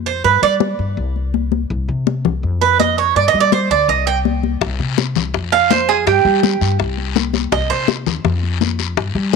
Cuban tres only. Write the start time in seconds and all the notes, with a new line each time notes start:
0.06 C5
0.24 B4
0.43 D5
2.61 B4
2.80 D#5
2.98 C#5
3.16 D5
3.28 D#5
3.40 D5
3.53 C5
3.71 D5
3.89 D#5
4.07 G5
5.52 F5
5.71 C5
5.89 G#4
6.07 G4
7.52 D#5
7.70 C5